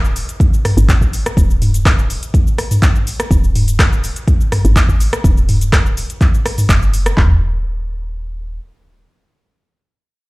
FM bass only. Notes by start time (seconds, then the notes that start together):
Already playing: D#1
0.77 G#1
1.37 D#1
3.31 D#1
4.65 G#1
5.24 D#1
6.69 F#1
7.17 D#1